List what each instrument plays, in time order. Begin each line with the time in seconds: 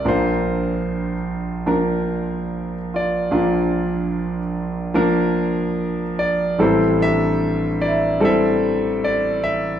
0.05 grand piano A#1 A#2 F3 A#3 D4 A#4 C5
0.09 grand piano F4
1.66 grand piano F3 A#3 D4 A#4
1.72 grand piano D4
2.94 grand piano F4 D5
3.31 grand piano A#1 A#2 F3 A#3 D4 F4
4.94 grand piano F3 A#3 D4 A#4
6.19 grand piano D5
6.59 grand piano A1 A2 G3 C4 E4 G4 A4 C5
7.00 harp D4, grand piano E5
7.81 harp E4, grand piano D5
8.20 grand piano G3 C4 E4 A4
8.25 grand piano C5 E5
9.04 grand piano D5
9.44 grand piano E5